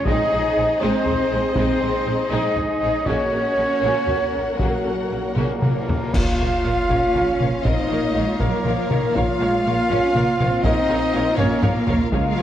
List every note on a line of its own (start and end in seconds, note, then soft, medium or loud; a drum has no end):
0.05 0.15 A#1 loud
0.05 0.30 G#3 loud
0.05 3.05 C4 loud
0.05 0.31 C4 medium
0.05 0.80 D#4 loud
0.05 0.31 D#4 medium
0.05 3.05 G#4 loud
0.05 0.80 G#4 loud
0.05 3.05 C5 loud
0.05 3.05 D#5 loud
0.05 0.81 D#5 loud
0.05 0.55 D#5 loud
0.05 taiko loud
0.31 0.41 A#1 medium
0.31 0.40 G#3 medium
0.31 0.41 C4 medium
0.31 0.41 D#4 medium
0.57 0.65 A#1 medium
0.57 0.65 G#3 medium
0.57 0.65 C4 medium
0.80 0.90 A#1 loud
0.80 1.05 G#3 loud
0.80 1.53 C4 loud
0.80 1.03 C4 loud
0.80 1.53 D#4 loud
0.80 1.03 D#4 loud
0.80 1.52 C5 loud
0.80 1.38 C5 loud
0.80 1.52 C5 loud
1.04 1.15 A#1 medium
1.04 1.15 G#3 medium
1.04 1.12 C4 medium
1.04 1.13 D#4 medium
1.04 taiko low medium
1.32 1.40 A#1 medium
1.32 1.40 G#3 medium
1.32 1.41 G#3 medium
1.32 1.40 C4 medium
1.54 1.64 A#1 loud
1.54 1.80 G#3 medium
1.54 2.28 C4 loud
1.54 1.80 C4 medium
1.54 2.29 D#4 loud
1.54 1.80 D#4 medium
1.54 2.29 C5 loud
1.54 2.30 C5 loud
1.54 taiko loud
1.82 1.90 A#1 medium
1.82 1.91 G#3 medium
1.82 1.90 C4 medium
1.82 1.90 D#4 medium
2.06 2.15 A#1 medium
2.06 2.16 G#3 medium
2.06 2.15 G#3 medium
2.06 2.14 C4 medium
2.29 2.40 A#1 loud
2.29 2.55 G#3 loud
2.29 2.54 C4 loud
2.29 3.04 D#4 loud
2.29 2.54 D#4 medium
2.29 3.05 G#4 loud
2.29 3.08 D#5 loud
2.29 3.09 D#5 loud
2.29 3.06 D#5 loud
2.56 2.64 A#1 medium
2.56 2.66 G#3 medium
2.56 2.64 C4 medium
2.56 2.64 D#4 medium
2.56 taiko low medium
2.82 2.91 A#1 medium
2.82 2.90 G#3 medium
2.82 2.91 G#3 medium
2.82 2.90 C4 medium
3.06 3.16 A#1 medium
3.06 3.30 C#3 medium
3.06 6.12 A#3 loud
3.06 3.30 A#3 medium
3.06 4.59 C#4 loud
3.06 3.30 C#4 medium
3.06 4.59 F#4 loud
3.06 3.30 F#4 medium
3.06 6.15 A#4 loud
3.06 4.59 C#5 loud
3.06 6.12 C#5 loud
3.06 4.58 C#5 loud
3.06 4.60 C#5 loud
3.06 6.15 F#5 loud
3.06 taiko loud
3.31 3.40 A#1 medium
3.31 3.41 C#3 medium
3.31 3.41 A#3 medium
3.31 3.39 C#4 medium
3.31 3.39 F#4 medium
3.57 3.67 A#1 medium
3.57 3.66 C#3 medium
3.57 3.65 A#3 medium
3.57 3.66 A#3 medium
3.57 3.65 C#4 medium
3.82 3.90 A#1 medium
3.82 4.07 C#3 medium
3.82 4.07 A#3 medium
3.82 4.07 C#4 medium
3.82 4.06 F#4 medium
4.08 4.16 A#1 medium
4.08 4.17 C#3 medium
4.08 4.17 A#3 medium
4.08 4.16 C#4 medium
4.08 4.16 F#4 medium
4.08 taiko low medium
4.32 4.44 A#1 medium
4.32 4.42 C#3 medium
4.32 4.41 A#3 medium
4.32 4.42 A#3 medium
4.32 4.40 C#4 medium
4.56 4.68 A#1 medium
4.56 4.84 C#3 medium
4.56 5.86 F#3 medium
4.56 5.35 A#3 medium
4.56 4.82 C#4 medium
4.56 4.82 F#4 medium
4.56 5.35 F#4 medium
4.56 taiko loud
4.61 4.84 A#3 medium
4.84 4.94 A#1 medium
4.84 4.94 C#3 medium
4.84 4.95 A#3 medium
4.84 4.93 C#4 medium
4.84 4.92 F#4 medium
5.10 5.19 A#1 medium
5.10 5.20 C#3 medium
5.10 5.19 A#3 medium
5.10 5.20 A#3 medium
5.10 5.18 C#4 soft
5.35 5.44 A#1 medium
5.35 5.61 C#3 medium
5.35 6.16 A#3 medium
5.35 6.11 A#3 medium
5.35 5.61 A#3 medium
5.35 5.61 C#4 medium
5.35 5.60 F#4 medium
5.35 6.10 A#4 medium
5.35 6.15 A#4 medium
5.35 taiko mid medium
5.62 5.71 A#1 medium
5.62 5.70 C#3 medium
5.62 5.71 A#3 medium
5.62 5.71 C#4 medium
5.62 5.70 F#4 medium
5.62 taiko mid medium
5.87 5.98 A#1 medium
5.87 5.97 C#3 medium
5.87 5.95 A#3 soft
5.87 5.98 A#3 medium
5.87 5.96 C#4 medium
5.87 taiko low loud
6.12 6.23 A#1 medium
6.12 10.60 A#3 loud
6.12 10.60 F4 loud
6.12 7.62 F4 loud
6.12 7.48 F4 loud
6.12 6.23 A#4 medium
6.12 10.60 C#5 loud
6.12 6.23 C#5 medium
6.12 10.60 F5 loud
6.12 6.22 F5 medium
6.12 7.37 F5 loud
6.12 7.62 F5 loud
6.12 concert bass drum medium
6.12 taiko loud
6.12 crash medium
6.38 6.49 A#1 medium
6.38 6.47 A#4 medium
6.38 6.48 C#5 medium
6.38 6.47 F5 medium
6.64 6.73 A#1 medium
6.64 6.72 A#4 medium
6.64 6.72 C#5 medium
6.64 6.73 F5 medium
6.88 6.98 A#1 medium
6.88 7.62 C#4 medium
6.88 6.97 A#4 medium
6.88 6.97 C#5 medium
6.88 6.96 F5 medium
6.88 taiko medium
7.14 7.24 A#1 medium
7.14 7.23 A#4 medium
7.14 7.23 C#5 medium
7.14 7.23 F5 medium
7.14 taiko mid medium
7.39 7.48 A#1 medium
7.39 7.49 A#4 medium
7.39 7.49 C#5 medium
7.39 7.47 F5 medium
7.39 taiko mid medium
7.63 7.73 A#1 medium
7.63 7.90 C4 loud
7.63 8.24 D#4 loud
7.63 8.42 D#4 loud
7.63 7.74 A#4 medium
7.63 7.73 C#5 medium
7.63 8.40 D#5 loud
7.63 8.41 D#5 loud
7.63 7.72 F5 medium
7.63 taiko loud
7.88 7.98 A#1 medium
7.88 8.15 A#3 medium
7.88 8.00 A#4 medium
7.88 7.99 C#5 medium
7.88 7.96 F5 medium
8.14 8.23 A#1 medium
8.14 8.40 G#3 medium
8.14 8.24 A#4 medium
8.14 8.24 C#5 medium
8.14 8.22 F5 medium
8.39 8.48 A#1 medium
8.39 8.65 F#3 medium
8.39 9.16 A#3 loud
8.39 9.15 A#3 loud
8.39 9.15 A#4 loud
8.39 8.49 A#4 medium
8.39 8.49 C#5 medium
8.39 8.49 F5 medium
8.39 taiko medium
8.65 8.74 A#1 medium
8.65 8.90 F3 medium
8.65 8.75 A#4 medium
8.65 8.75 C#5 medium
8.65 8.76 F5 medium
8.65 taiko mid medium
8.91 8.99 A#1 medium
8.91 9.15 D#3 medium
8.91 8.99 A#4 medium
8.91 8.99 C#5 medium
8.91 8.99 F5 medium
8.91 taiko mid medium
9.16 9.25 A#1 loud
9.16 9.40 F3 medium
9.16 10.63 F4 loud
9.16 10.66 F4 loud
9.16 9.25 A#4 medium
9.16 9.24 C#5 medium
9.16 10.65 F5 loud
9.16 10.62 F5 loud
9.16 9.26 F5 medium
9.16 taiko loud
9.41 9.49 A#1 medium
9.41 9.66 G#3 medium
9.41 9.49 A#4 medium
9.41 9.49 C#5 medium
9.41 9.49 F5 medium
9.41 taiko rim soft
9.66 9.75 A#1 medium
9.66 9.91 A#3 medium
9.66 9.74 A#4 medium
9.66 9.75 C#5 medium
9.66 9.75 F5 medium
9.91 9.99 A#1 loud
9.91 10.16 C#4 loud
9.91 9.99 A#4 medium
9.91 9.99 C#5 medium
9.91 10.00 F5 loud
9.91 taiko medium
10.15 10.23 A#1 medium
10.15 10.40 A#3 loud
10.15 10.23 A#4 medium
10.15 10.24 C#5 medium
10.15 10.25 F5 medium
10.15 taiko mid medium
10.40 10.49 A#1 loud
10.40 11.37 C4 loud
10.40 10.48 A#4 medium
10.40 10.48 C#5 medium
10.40 10.49 F5 medium
10.40 taiko mid medium
10.63 10.73 A#1 loud
10.63 12.08 A#3 loud
10.63 11.37 D#4 loud
10.63 11.39 D#4 loud
10.63 12.42 F4 loud
10.63 12.42 A#4 loud
10.63 10.72 A#4 medium
10.63 10.72 C#5 medium
10.63 11.36 D#5 loud
10.63 11.37 D#5 loud
10.63 12.42 F5 loud
10.63 10.72 F5 medium
10.63 taiko loud
10.88 10.97 A#1 medium
10.88 10.98 A#4 medium
10.88 10.97 C#5 medium
10.88 10.97 F5 medium
10.88 taiko rim soft
11.12 11.23 A#1 loud
11.12 11.23 A#4 medium
11.12 11.23 C#5 medium
11.12 11.21 F5 medium
11.37 11.47 A#1 loud
11.37 12.12 A#3 loud
11.37 11.62 C#4 loud
11.37 11.63 C#4 loud
11.37 11.46 A#4 medium
11.37 11.62 C#5 loud
11.37 11.63 C#5 loud
11.37 11.46 C#5 loud
11.37 11.45 F5 loud
11.37 taiko low-mid medium
11.62 11.71 A#1 loud
11.62 11.71 A#4 loud
11.62 11.71 C#5 medium
11.62 11.70 F5 medium
11.62 taiko low-mid loud
11.87 11.98 A#1 loud
11.87 11.96 A#4 medium
11.87 11.96 C#5 medium
11.87 11.95 F5 medium
11.87 taiko low loud
12.10 12.21 C#2 loud
12.10 12.42 G#3 loud
12.10 12.37 G#3 loud
12.10 12.42 F4 loud
12.10 12.21 G#4 medium
12.10 12.21 C#5 loud
12.10 12.42 F5 loud
12.10 12.20 F5 loud
12.10 12.42 F5 loud
12.10 taiko loud
12.36 12.42 F3 loud
12.36 12.42 G#4 medium
12.36 12.42 C#5 loud
12.36 12.42 F5 medium